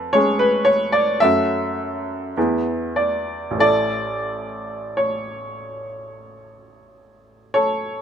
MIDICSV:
0, 0, Header, 1, 2, 480
1, 0, Start_track
1, 0, Key_signature, 3, "major"
1, 0, Tempo, 1065719
1, 548, Tempo, 1145038
1, 1028, Tempo, 1244813
1, 1508, Tempo, 1372998
1, 1509, Time_signature, 4, 2, 24, 8
1, 1988, Tempo, 1287554
1, 3121, End_track
2, 0, Start_track
2, 0, Title_t, "Grand piano"
2, 0, Program_c, 0, 0
2, 0, Control_c, 0, 64, 127
2, 0, Note_on_c, 0, 41, 56
2, 0, Note_on_c, 0, 71, 86
2, 49, Note_off_c, 0, 41, 0
2, 58, Note_on_c, 0, 73, 82
2, 61, Note_off_c, 0, 71, 0
2, 67, Note_on_c, 0, 56, 42
2, 68, Note_on_c, 0, 61, 41
2, 69, Note_on_c, 0, 68, 47
2, 177, Note_on_c, 0, 71, 78
2, 178, Note_off_c, 0, 73, 0
2, 291, Note_on_c, 0, 73, 79
2, 299, Note_off_c, 0, 71, 0
2, 416, Note_on_c, 0, 74, 76
2, 419, Note_off_c, 0, 73, 0
2, 531, Note_off_c, 0, 56, 0
2, 532, Note_off_c, 0, 61, 0
2, 533, Note_off_c, 0, 68, 0
2, 542, Note_on_c, 0, 76, 86
2, 545, Note_off_c, 0, 74, 0
2, 549, Note_on_c, 0, 42, 52
2, 550, Note_on_c, 0, 57, 38
2, 554, Note_on_c, 0, 61, 37
2, 554, Note_on_c, 0, 66, 36
2, 556, Control_c, 0, 64, 0
2, 627, Control_c, 0, 64, 127
2, 1012, Note_off_c, 0, 57, 0
2, 1014, Note_off_c, 0, 42, 0
2, 1014, Note_off_c, 0, 61, 0
2, 1014, Note_off_c, 0, 66, 0
2, 1032, Note_on_c, 0, 40, 49
2, 1032, Note_on_c, 0, 59, 36
2, 1033, Note_on_c, 0, 64, 36
2, 1034, Control_c, 0, 64, 0
2, 1035, Note_on_c, 0, 68, 38
2, 1103, Control_c, 0, 64, 127
2, 1258, Note_off_c, 0, 76, 0
2, 1259, Note_on_c, 0, 74, 60
2, 1469, Note_on_c, 0, 33, 48
2, 1495, Note_off_c, 0, 59, 0
2, 1496, Note_off_c, 0, 40, 0
2, 1496, Note_off_c, 0, 64, 0
2, 1497, Note_off_c, 0, 68, 0
2, 1499, Note_on_c, 0, 57, 37
2, 1501, Note_off_c, 0, 74, 0
2, 1503, Note_on_c, 0, 64, 39
2, 1507, Note_on_c, 0, 74, 80
2, 1508, Note_on_c, 0, 69, 36
2, 1516, Control_c, 0, 64, 0
2, 1599, Control_c, 0, 64, 127
2, 1985, Note_on_c, 0, 73, 57
2, 1988, Note_off_c, 0, 74, 0
2, 2937, Note_off_c, 0, 73, 0
2, 2941, Note_off_c, 0, 69, 0
2, 2943, Note_on_c, 0, 73, 67
2, 2946, Note_on_c, 0, 69, 52
2, 3121, Note_off_c, 0, 33, 0
2, 3121, Note_off_c, 0, 57, 0
2, 3121, Note_off_c, 0, 64, 0
2, 3121, Note_off_c, 0, 69, 0
2, 3121, Note_off_c, 0, 73, 0
2, 3121, End_track
0, 0, End_of_file